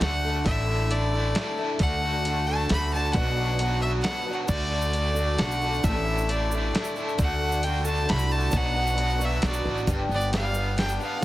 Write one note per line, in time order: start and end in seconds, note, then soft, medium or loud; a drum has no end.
0.00 0.41 D2 medium
0.00 0.43 D3 medium
0.00 0.23 A3 medium
0.00 0.42 D4 medium
0.00 0.23 D4 medium
0.00 0.42 F#4 medium
0.00 0.45 F#4 loud
0.00 0.42 A4 medium
0.00 0.24 A4 medium
0.00 0.42 D5 medium
0.00 0.42 F#5 loud
0.00 snare medium
0.00 closed hi-hat medium
0.25 0.48 D4 soft
0.25 0.47 F#4 soft
0.25 0.46 A4 medium
0.45 1.31 A1 loud
0.45 0.91 A2 medium
0.45 0.91 D3 medium
0.45 0.91 A3 medium
0.45 1.77 D4 medium
0.45 1.77 E4 medium
0.45 1.77 A4 medium
0.45 1.78 D5 medium
0.45 0.93 E5 loud
0.45 kick loud
0.45 closed hi-hat medium
0.49 0.92 D4 medium
0.49 0.92 E4 medium
0.49 0.94 A4 medium
0.67 0.90 A3 medium
0.67 0.91 D4 medium
0.67 0.91 E4 medium
0.89 1.35 D3 medium
0.89 1.13 A3 medium
0.89 1.14 D4 medium
0.89 1.58 D5 medium
0.89 closed hi-hat medium
0.93 1.13 E4 medium
0.93 1.12 A4 medium
1.14 1.34 A3 soft
1.14 1.35 D4 soft
1.14 1.36 E4 soft
1.14 1.36 A4 soft
1.34 1.78 A2 loud
1.34 1.79 D3 loud
1.34 1.58 A3 medium
1.34 1.82 D4 loud
1.34 1.57 E4 medium
1.34 1.56 A4 medium
1.34 snare medium
1.34 closed hi-hat medium
1.58 1.80 A3 soft
1.58 1.81 D4 medium
1.58 1.81 E4 medium
1.58 1.80 A4 medium
1.79 2.66 D2 loud
1.79 2.25 D3 medium
1.79 2.23 A3 medium
1.79 3.12 D4 medium
1.79 2.05 D4 medium
1.79 3.12 F#4 medium
1.79 2.26 F#4 medium
1.79 3.12 A4 medium
1.79 2.26 A4 medium
1.79 3.12 D5 medium
1.79 2.48 F#5 loud
1.79 kick loud
1.79 closed hi-hat medium
2.03 2.25 A3 medium
2.03 2.27 D4 medium
2.03 2.28 F#4 medium
2.25 2.68 D3 medium
2.25 2.68 A3 medium
2.25 2.70 D4 medium
2.25 2.71 F#4 medium
2.25 2.71 A4 medium
2.25 closed hi-hat medium
2.47 2.69 A3 medium
2.47 2.71 D4 medium
2.47 2.72 F#4 medium
2.47 2.69 A5 loud
2.69 3.11 D2 medium
2.69 3.13 D3 loud
2.69 2.92 A3 medium
2.69 2.92 D4 medium
2.69 2.93 F#4 medium
2.69 2.92 A4 medium
2.69 2.92 B5 loud
2.69 snare medium
2.69 closed hi-hat medium
2.93 3.15 D4 soft
2.93 3.16 F#4 soft
2.93 3.15 A4 medium
2.93 3.13 A5 loud
3.12 4.00 B1 loud
3.12 3.60 B2 medium
3.12 4.48 F#3 medium
3.12 3.58 B3 medium
3.12 4.46 D4 medium
3.12 4.46 F#4 medium
3.12 4.47 B4 medium
3.12 4.47 D5 medium
3.12 3.81 F#5 loud
3.12 kick loud
3.12 closed hi-hat medium
3.17 3.60 D4 medium
3.17 3.61 F#4 medium
3.17 3.61 B4 medium
3.37 3.62 D4 medium
3.37 3.63 F#4 medium
3.41 3.60 B3 medium
3.59 4.04 F#3 medium
3.59 4.03 B3 medium
3.59 4.05 D4 medium
3.59 4.05 F#4 medium
3.59 4.06 B4 medium
3.59 closed hi-hat medium
3.81 4.04 B3 medium
3.81 4.06 D4 medium
3.81 4.06 F#4 medium
3.81 3.92 E5 medium
4.01 4.47 B2 medium
4.01 4.47 F#3 loud
4.01 4.27 B3 medium
4.01 4.27 D4 medium
4.01 4.34 F#5 loud
4.01 snare loud
4.01 closed hi-hat medium
4.06 4.27 F#4 medium
4.06 4.25 B4 medium
4.26 4.49 B3 soft
4.26 4.49 D4 soft
4.26 4.50 F#4 soft
4.26 4.49 B4 medium
4.48 5.35 D2 loud
4.48 4.94 D3 medium
4.48 4.93 A3 medium
4.48 5.13 D4 medium
4.48 4.94 D4 medium
4.48 5.13 F#4 medium
4.48 4.94 F#4 medium
4.48 5.14 A4 medium
4.48 4.96 A4 medium
4.48 5.40 D5 loud
4.48 5.13 D5 medium
4.48 kick loud
4.48 crash loud
4.48 shaker loud
4.70 4.94 A3 medium
4.70 4.95 D4 medium
4.70 4.95 F#4 medium
4.82 shaker medium
4.93 5.36 D3 medium
4.93 5.16 A3 medium
4.93 5.17 D4 medium
4.93 5.17 F#4 medium
4.93 5.16 A4 medium
4.93 closed hi-hat medium
4.93 shaker soft
5.14 5.82 D4 medium
5.14 5.83 F#4 medium
5.14 5.82 A4 medium
5.14 5.39 A4 medium
5.14 5.83 D5 medium
5.14 shaker loud
5.19 5.39 A3 medium
5.19 5.40 D4 soft
5.19 5.40 F#4 medium
5.37 5.80 B1 loud
5.37 5.82 D3 medium
5.37 5.62 A3 medium
5.37 5.62 D4 medium
5.37 5.84 F#4 loud
5.37 5.85 F#5 loud
5.37 snare medium
5.37 closed hi-hat medium
5.51 shaker medium
5.61 5.84 D4 soft
5.61 5.85 F#4 soft
5.61 5.84 A4 medium
5.61 shaker soft
5.74 shaker soft
5.83 6.70 A1 loud
5.83 6.29 A2 medium
5.83 6.29 D3 medium
5.83 6.29 A3 medium
5.83 7.16 D4 medium
5.83 6.31 D4 medium
5.83 7.16 E4 medium
5.83 6.30 E4 medium
5.83 6.32 A4 medium
5.83 7.16 D5 medium
5.83 6.31 E5 medium
5.83 kick loud
5.83 closed hi-hat medium
5.83 shaker loud
6.05 6.28 A3 medium
6.05 6.30 D4 medium
6.05 6.30 E4 medium
6.18 shaker medium
6.28 6.72 D3 medium
6.28 6.52 A3 medium
6.28 6.53 D4 medium
6.28 6.52 E4 medium
6.28 6.96 D5 medium
6.28 closed hi-hat medium
6.28 shaker soft
6.33 6.51 A4 medium
6.52 6.73 A3 soft
6.52 6.74 D4 soft
6.52 6.75 E4 soft
6.52 6.74 A4 medium
6.52 shaker loud
6.72 7.16 A2 medium
6.72 7.16 D3 loud
6.72 6.96 A3 medium
6.72 6.97 D4 medium
6.72 6.96 E4 medium
6.72 snare medium
6.72 closed hi-hat medium
6.77 6.95 A4 medium
6.84 shaker medium
6.96 7.17 A3 soft
6.96 7.18 D4 medium
6.96 7.19 E4 medium
6.96 7.18 A4 medium
6.96 shaker soft
7.09 shaker soft
7.18 8.05 D2 loud
7.18 7.63 D3 medium
7.18 7.62 A3 medium
7.18 8.50 D4 medium
7.18 7.64 D4 medium
7.18 8.49 F#4 medium
7.18 7.65 F#4 medium
7.18 8.51 A4 medium
7.18 7.64 A4 medium
7.18 8.50 D5 medium
7.18 7.65 F#5 loud
7.18 kick loud
7.18 closed hi-hat medium
7.18 shaker medium
7.40 7.62 A3 medium
7.40 7.64 D4 medium
7.40 7.65 F#4 medium
7.52 shaker medium
7.62 8.04 D3 medium
7.62 7.86 A3 medium
7.62 7.86 D4 medium
7.62 7.86 F#4 medium
7.62 7.84 A4 medium
7.62 7.85 G5 loud
7.62 closed hi-hat medium
7.62 shaker soft
7.85 8.06 A3 medium
7.85 8.09 D4 soft
7.85 8.09 F#4 medium
7.85 8.08 A4 medium
7.85 8.11 A5 loud
7.85 shaker loud
8.05 8.50 D3 loud
8.05 8.31 A3 medium
8.05 8.33 B5 loud
8.05 closed hi-hat medium
8.10 8.50 C2 loud
8.10 8.32 D4 medium
8.10 8.31 F#4 medium
8.10 8.29 A4 medium
8.10 snare medium
8.19 shaker medium
8.31 8.53 D4 soft
8.31 8.53 F#4 soft
8.31 8.53 A4 medium
8.31 8.58 A5 loud
8.31 shaker soft
8.40 shaker soft
8.51 9.39 B1 loud
8.51 8.98 B2 medium
8.51 8.98 F#3 medium
8.51 8.96 B3 medium
8.51 9.18 D4 medium
8.51 8.97 D4 medium
8.51 9.17 F#4 medium
8.51 8.98 F#4 medium
8.51 9.18 B4 medium
8.51 9.20 D5 medium
8.51 kick loud
8.51 closed hi-hat medium
8.51 shaker loud
8.55 8.98 B4 medium
8.55 9.26 F#5 loud
8.74 8.96 B3 medium
8.74 8.98 D4 medium
8.74 8.99 F#4 medium
8.87 shaker medium
8.96 9.42 F#3 medium
8.96 9.20 B3 medium
8.96 9.20 D4 medium
8.96 9.19 F#4 medium
8.96 9.18 B4 medium
8.96 closed hi-hat medium
9.10 shaker soft
9.19 9.86 D4 medium
9.19 9.43 D4 medium
9.19 9.87 F#4 soft
9.19 9.43 F#4 medium
9.19 9.87 B4 soft
9.19 9.43 B4 soft
9.19 9.87 C#6 medium
9.19 shaker medium
9.23 9.42 B3 soft
9.23 9.45 E5 medium
9.42 9.64 B1 medium
9.42 9.86 B2 medium
9.42 9.87 F#3 medium
9.42 9.66 B3 medium
9.42 9.66 D4 medium
9.42 9.64 F#4 medium
9.42 snare medium
9.42 closed hi-hat medium
9.42 shaker soft
9.46 9.63 B4 medium
9.46 9.76 D5 medium
9.54 shaker medium
9.64 9.86 A1 medium
9.64 9.88 B3 soft
9.64 9.87 D4 soft
9.64 9.88 F#4 medium
9.64 9.88 B4 medium
9.78 shaker soft
9.87 10.08 G1 loud
9.87 11.01 G2 medium
9.87 10.31 G3 medium
9.87 11.20 D4 medium
9.87 10.33 D4 medium
9.87 11.20 G4 medium
9.87 10.33 G4 medium
9.87 11.21 B4 medium
9.87 10.34 B4 medium
9.87 11.21 D5 medium
9.87 kick loud
9.87 closed hi-hat medium
9.87 shaker medium
10.09 10.96 G1 medium
10.09 10.54 B3 medium
10.09 shaker soft
10.15 10.33 D5 loud
10.21 shaker medium
10.32 10.55 G3 medium
10.32 10.56 G4 medium
10.32 10.54 B4 medium
10.32 10.77 F5 loud
10.32 snare medium
10.32 closed hi-hat medium
10.32 shaker soft
10.54 11.01 B3 medium
10.54 10.78 D4 soft
10.54 10.78 G4 soft
10.54 10.78 B4 soft
10.54 shaker medium
10.78 11.00 G3 medium
10.78 11.01 D4 medium
10.78 11.00 G4 medium
10.78 10.98 B4 medium
10.78 11.00 G5 medium
10.78 snare medium
10.78 closed hi-hat medium
10.78 shaker soft
10.89 shaker medium
11.00 11.24 B3 medium
11.00 11.23 D4 soft
11.00 11.23 G4 soft
11.00 11.23 B4 medium
11.00 11.25 F5 medium
11.00 shaker soft
11.21 11.25 C#4 medium
11.21 11.25 E4 medium
11.21 11.25 A4 medium
11.21 11.25 C#5 medium